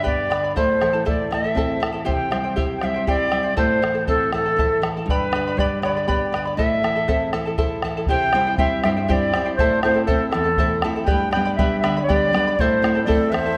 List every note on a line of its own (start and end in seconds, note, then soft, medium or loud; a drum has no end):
0.00 0.53 G2 medium
0.00 0.30 G4 medium
0.00 0.29 B4 medium
0.00 0.29 G5 medium
0.04 0.31 B3 soft
0.04 0.30 D5 medium
0.04 0.52 D5 medium
0.04 0.30 B5 medium
0.04 bombo low medium
0.30 0.55 D3 soft
0.30 0.43 B4 soft
0.30 0.43 D5 medium
0.30 0.43 G5 medium
0.30 0.43 B5 medium
0.30 bombo rim medium
0.44 0.56 B4 soft
0.44 0.56 D5 soft
0.44 0.56 B5 soft
0.56 2.03 A2 medium
0.56 0.80 E4 medium
0.56 0.81 A4 medium
0.56 0.81 C5 medium
0.56 1.03 C5 medium
0.56 0.79 E5 medium
0.56 0.81 A5 medium
0.56 bombo low medium
0.80 1.06 E3 soft
0.80 0.94 E4 medium
0.80 0.93 A4 medium
0.80 0.93 E5 soft
0.80 0.92 A5 medium
0.80 bombo rim medium
0.93 1.05 E4 soft
0.93 1.05 A4 soft
0.93 1.05 A5 soft
1.05 1.30 A3 soft
1.05 1.31 E4 medium
1.05 1.31 A4 medium
1.05 1.31 C5 medium
1.05 1.35 D5 medium
1.05 1.31 E5 medium
1.05 1.31 A5 medium
1.05 bombo rim soft
1.05 bombo low medium
1.31 1.55 E3 soft
1.31 1.45 E4 medium
1.31 1.44 A4 medium
1.31 1.44 E5 medium
1.31 1.89 E5 medium
1.31 1.43 A5 medium
1.31 bombo rim medium
1.44 1.56 E4 soft
1.44 1.56 A4 soft
1.44 1.56 A5 soft
1.44 bombo rim soft
1.55 1.80 C4 soft
1.55 1.81 E4 medium
1.55 1.80 A4 medium
1.55 1.81 C5 medium
1.55 1.80 E5 medium
1.55 1.82 A5 medium
1.55 bombo low medium
1.71 bombo rim soft
1.80 2.05 E3 soft
1.80 1.93 E4 soft
1.80 1.92 A4 medium
1.80 1.94 E5 medium
1.80 1.91 A5 medium
1.80 bombo rim medium
1.92 2.04 E4 soft
1.92 2.05 A4 soft
1.92 2.06 A5 soft
1.92 bombo rim soft
2.05 3.53 C3 medium
2.05 2.29 E4 medium
2.05 2.31 G4 medium
2.05 2.30 C5 medium
2.05 2.30 E5 medium
2.05 2.31 G5 medium
2.05 bombo low medium
2.11 2.55 G5 medium
2.31 2.56 G3 soft
2.31 2.44 E4 soft
2.31 2.43 C5 medium
2.31 2.44 E5 medium
2.31 2.43 G5 medium
2.31 bombo rim medium
2.44 2.55 E4 soft
2.44 2.56 C5 soft
2.44 2.56 G5 soft
2.56 2.81 C4 soft
2.56 2.81 E4 medium
2.56 2.81 G4 medium
2.56 2.82 C5 medium
2.56 2.81 E5 medium
2.56 2.82 G5 medium
2.56 bombo low medium
2.75 2.85 G5 medium
2.81 3.06 G3 soft
2.81 2.95 E4 medium
2.81 2.94 C5 medium
2.81 2.94 E5 soft
2.81 3.08 E5 medium
2.81 2.93 G5 medium
2.81 bombo rim medium
2.94 3.06 E4 soft
2.94 3.07 C5 soft
2.94 3.07 G5 soft
3.07 3.31 E4 soft
3.07 3.31 E4 medium
3.07 3.32 G4 medium
3.07 3.31 C5 medium
3.07 3.54 D5 medium
3.07 3.30 E5 medium
3.07 3.31 G5 medium
3.07 bombo low medium
3.31 3.56 G3 soft
3.31 3.43 E4 medium
3.31 3.43 C5 soft
3.31 3.44 E5 soft
3.31 3.42 G5 medium
3.31 bombo rim medium
3.43 3.56 E4 soft
3.43 3.55 C5 soft
3.43 3.56 G5 soft
3.57 5.03 A2 medium
3.57 3.81 E4 medium
3.57 3.81 A4 medium
3.57 3.82 C5 medium
3.57 4.04 C5 medium
3.57 3.81 E5 medium
3.57 3.81 A5 medium
3.57 bombo low medium
3.82 4.07 E3 soft
3.82 3.94 E4 medium
3.82 3.93 A4 medium
3.82 3.95 E5 medium
3.82 3.93 A5 medium
3.82 bombo rim medium
3.94 4.07 E4 soft
3.94 4.07 A4 soft
3.94 4.07 A5 soft
4.07 4.32 C4 soft
4.07 4.33 E4 medium
4.07 4.33 A4 medium
4.07 4.31 A4 medium
4.07 4.32 C5 medium
4.07 4.31 E5 medium
4.07 4.33 A5 medium
4.07 bombo low medium
4.33 4.57 E3 soft
4.33 4.46 E4 soft
4.33 4.45 A4 medium
4.33 4.86 A4 medium
4.33 4.45 E5 soft
4.33 4.44 A5 medium
4.33 bombo rim medium
4.46 4.57 E4 soft
4.46 4.58 A4 soft
4.46 4.58 A5 soft
4.56 4.81 E4 soft
4.56 4.81 E4 medium
4.56 4.82 A4 medium
4.56 4.83 C5 medium
4.56 4.81 E5 medium
4.56 4.82 A5 medium
4.56 bombo low medium
4.82 5.06 E3 soft
4.82 4.95 E4 soft
4.82 4.95 A4 medium
4.82 4.95 E5 medium
4.82 4.95 A5 medium
4.82 bombo rim medium
4.97 5.09 E4 soft
4.97 5.09 A4 soft
4.97 5.08 A5 soft
5.06 6.53 G2 medium
5.06 5.60 B4 medium
5.06 bombo low medium
5.10 5.34 G4 medium
5.10 5.33 B4 medium
5.10 5.34 D5 medium
5.10 5.33 G5 medium
5.10 5.34 B5 medium
5.32 5.56 D3 soft
5.32 5.46 B4 soft
5.32 5.47 D5 medium
5.32 5.46 G5 medium
5.32 5.46 B5 medium
5.32 bombo rim medium
5.47 5.58 B4 soft
5.47 5.59 D5 soft
5.47 5.59 B5 soft
5.57 5.82 G3 medium
5.57 5.83 G4 medium
5.57 5.83 B4 medium
5.57 5.81 D5 medium
5.57 5.84 D5 medium
5.57 5.82 G5 medium
5.57 5.84 B5 medium
5.57 bombo low medium
5.82 6.07 D3 medium
5.82 5.96 B4 soft
5.82 6.54 D5 medium
5.82 5.96 D5 medium
5.82 5.95 G5 medium
5.82 5.95 B5 medium
5.82 bombo rim medium
5.97 6.07 B4 soft
5.97 6.07 D5 soft
5.97 6.07 B5 soft
6.08 6.32 B3 soft
6.08 6.33 G4 medium
6.08 6.33 B4 medium
6.08 6.33 D5 medium
6.08 6.33 G5 medium
6.08 6.33 B5 medium
6.08 bombo low medium
6.32 6.57 D3 soft
6.32 6.46 B4 medium
6.32 6.46 D5 soft
6.32 6.46 G5 soft
6.32 6.44 B5 medium
6.32 bombo rim medium
6.45 6.59 B4 soft
6.45 6.58 D5 soft
6.45 6.58 B5 soft
6.56 8.04 A2 medium
6.56 6.83 E4 medium
6.56 6.83 A4 medium
6.56 6.83 C5 medium
6.56 7.28 E5 medium
6.56 6.82 E5 medium
6.56 6.83 A5 medium
6.56 bombo low medium
6.83 7.08 E3 soft
6.83 6.96 E4 soft
6.83 6.95 A4 medium
6.83 6.95 E5 medium
6.83 6.94 A5 medium
6.83 bombo rim medium
6.96 7.08 E4 soft
6.96 7.07 A4 soft
6.96 7.07 A5 soft
6.96 bombo rim soft
7.08 7.33 C4 soft
7.08 7.32 E4 medium
7.08 7.32 A4 medium
7.08 7.33 C5 medium
7.08 7.32 E5 medium
7.08 7.33 A5 medium
7.08 bombo rim soft
7.08 bombo low medium
7.33 7.58 E3 soft
7.33 7.46 E4 medium
7.33 7.46 A4 medium
7.33 7.46 E5 medium
7.33 7.44 A5 medium
7.33 bombo rim medium
7.45 7.57 E4 soft
7.45 7.57 A4 soft
7.45 7.57 A5 soft
7.58 7.83 E4 medium
7.58 7.83 E4 soft
7.58 7.83 A4 medium
7.58 7.83 C5 medium
7.58 7.83 E5 medium
7.58 7.83 A5 medium
7.58 bombo rim soft
7.58 bombo low medium
7.82 8.08 E3 soft
7.82 7.96 E4 medium
7.82 7.96 A4 medium
7.82 7.96 E5 medium
7.82 7.96 A5 medium
7.82 bombo rim medium
7.94 8.09 E4 soft
7.94 8.09 A4 soft
7.94 8.09 A5 soft
7.94 bombo rim soft
8.07 8.57 C3 medium
8.07 8.33 E4 medium
8.07 8.34 G4 medium
8.07 8.33 C5 medium
8.07 8.32 E5 medium
8.07 8.55 G5 medium
8.07 8.34 G5 medium
8.07 bombo low medium
8.33 8.57 G3 soft
8.33 8.57 C4 soft
8.33 8.46 E4 medium
8.33 8.57 E4 medium
8.33 8.46 C5 medium
8.33 8.46 E5 soft
8.33 8.46 G5 medium
8.33 bombo rim medium
8.47 8.58 E4 soft
8.47 8.58 C5 soft
8.47 8.58 G5 soft
8.58 8.98 G3 soft
8.58 8.98 C4 soft
8.58 8.98 E4 medium
8.58 8.84 E4 medium
8.58 8.84 G4 medium
8.58 8.84 C5 medium
8.58 8.81 E5 medium
8.58 8.83 E5 medium
8.58 8.84 G5 medium
8.58 bombo low medium
8.83 9.32 G2 medium
8.83 8.97 E4 medium
8.83 8.96 C5 medium
8.83 8.89 E5 medium
8.83 8.96 E5 medium
8.83 8.95 G5 medium
8.83 bombo rim medium
8.97 9.08 E4 soft
8.97 9.08 C5 soft
8.97 9.08 G5 soft
9.02 9.08 E5 medium
9.08 9.33 G3 soft
9.08 9.34 C4 soft
9.08 9.33 E4 medium
9.08 9.35 E4 soft
9.08 9.33 G4 medium
9.08 9.33 C5 medium
9.08 9.55 D5 medium
9.08 9.13 E5 medium
9.08 9.32 E5 medium
9.08 9.33 G5 medium
9.08 bombo low medium
9.33 9.54 G3 soft
9.33 9.54 C4 soft
9.33 9.45 E4 medium
9.33 9.55 E4 medium
9.33 9.44 C5 medium
9.33 9.46 E5 medium
9.33 9.44 G5 medium
9.33 bombo rim medium
9.45 9.58 E4 soft
9.45 9.57 C5 soft
9.45 9.58 G5 soft
9.56 10.07 A2 medium
9.56 9.82 E4 medium
9.56 9.80 C5 medium
9.56 9.84 C5 medium
9.56 9.82 E5 medium
9.56 bombo low medium
9.60 9.83 A4 medium
9.60 9.83 A5 medium
9.83 10.08 A3 soft
9.83 10.08 C4 soft
9.83 9.95 E4 medium
9.83 10.08 E4 medium
9.83 9.94 A4 medium
9.83 10.05 C5 medium
9.83 9.96 E5 medium
9.83 9.93 A5 medium
9.83 bombo rim medium
9.94 10.06 E4 soft
9.94 10.06 A4 soft
9.94 10.07 A5 soft
10.05 10.49 A3 soft
10.05 10.49 C4 soft
10.05 10.31 E4 medium
10.05 10.49 E4 soft
10.05 10.29 A4 medium
10.05 10.31 A4 medium
10.05 10.33 C5 medium
10.05 10.30 E5 medium
10.05 10.32 A5 medium
10.05 bombo low medium
10.29 10.45 E4 medium
10.29 10.84 A4 medium
10.29 10.44 A4 medium
10.29 10.45 E5 medium
10.29 10.43 A5 medium
10.29 bombo rim medium
10.34 10.82 E2 medium
10.44 10.57 E4 soft
10.44 10.58 A4 soft
10.44 10.58 A5 soft
10.57 10.83 A3 soft
10.57 10.83 C4 soft
10.57 10.82 E4 medium
10.57 10.84 E4 soft
10.57 10.83 A4 medium
10.57 10.83 C5 medium
10.57 10.82 E5 medium
10.57 10.83 A5 medium
10.57 bombo low medium
10.82 11.04 A3 soft
10.82 11.04 C4 soft
10.82 10.96 E4 soft
10.82 11.05 E4 medium
10.82 10.95 A4 medium
10.82 10.96 E5 medium
10.82 10.95 A5 medium
10.82 bombo rim medium
10.96 11.06 E4 soft
10.96 11.07 A4 soft
10.96 11.07 A5 soft
11.04 11.32 G4 medium
11.04 11.31 B4 medium
11.04 11.31 D5 medium
11.04 11.29 G5 medium
11.04 11.30 G5 medium
11.04 11.32 B5 medium
11.04 bombo low medium
11.11 11.58 G2 medium
11.31 11.45 B4 medium
11.31 11.45 D5 medium
11.31 11.45 G5 medium
11.31 11.54 G5 medium
11.31 11.44 B5 medium
11.31 bombo rim medium
11.35 11.58 G3 soft
11.35 11.58 B3 soft
11.35 11.58 D4 soft
11.45 11.58 B4 soft
11.45 11.58 D5 soft
11.45 11.57 B5 soft
11.55 11.99 G3 soft
11.55 11.99 B3 soft
11.55 11.84 G4 medium
11.55 11.83 B4 medium
11.55 11.83 D5 medium
11.55 11.79 E5 medium
11.55 11.82 G5 medium
11.55 11.83 B5 medium
11.55 bombo low medium
11.60 11.99 D4 soft
11.79 12.02 E5 medium
11.79 11.96 G5 medium
11.84 12.32 D3 medium
11.84 11.96 B4 medium
11.84 11.96 D5 medium
11.84 11.95 B5 medium
11.84 bombo rim medium
11.97 12.08 B4 soft
11.97 12.08 D5 soft
11.97 12.08 B5 soft
12.02 12.55 D5 medium
12.09 12.32 G3 soft
12.09 12.32 B3 soft
12.09 12.33 D4 soft
12.09 12.34 G4 medium
12.09 12.34 B4 medium
12.09 12.34 D5 medium
12.09 12.34 G5 medium
12.09 12.34 B5 medium
12.09 bombo low medium
12.33 12.53 G3 soft
12.33 12.53 B3 soft
12.33 12.54 D4 medium
12.33 12.47 B4 medium
12.33 12.47 D5 medium
12.33 12.47 G5 soft
12.33 bombo rim medium
12.37 12.46 B5 medium
12.47 12.60 B4 soft
12.47 12.60 D5 soft
12.47 12.59 B5 soft
12.55 13.07 A2 medium
12.55 12.61 D5 medium
12.55 bombo low medium
12.60 12.83 E4 medium
12.60 12.84 A4 medium
12.60 13.03 C5 medium
12.60 12.84 C5 medium
12.60 12.83 E5 medium
12.60 12.84 A5 medium
12.82 13.05 A3 soft
12.82 13.05 C4 soft
12.82 13.06 E4 soft
12.82 12.95 E4 medium
12.82 12.94 A4 medium
12.82 12.96 E5 medium
12.82 12.94 A5 medium
12.82 bombo rim medium
12.95 13.06 E4 soft
12.95 13.07 A4 soft
12.95 13.07 A5 soft
12.95 bombo rim soft
13.03 13.47 A3 soft
13.03 13.47 C4 soft
13.03 13.48 E4 soft
13.03 13.33 C5 medium
13.03 13.31 D5 medium
13.08 13.31 E4 medium
13.08 13.34 A4 medium
13.08 13.32 A4 medium
13.08 13.31 E5 medium
13.08 13.31 A5 medium
13.08 bombo rim soft
13.08 bombo low medium
13.30 13.57 E2 medium
13.30 13.45 E4 medium
13.30 13.45 A4 medium
13.30 13.57 C5 medium
13.30 13.57 E5 medium
13.30 13.45 E5 medium
13.30 13.44 A5 medium
13.34 bombo rim medium
13.46 13.57 E4 soft
13.46 13.57 A4 soft
13.46 13.57 A5 soft
13.46 bombo rim soft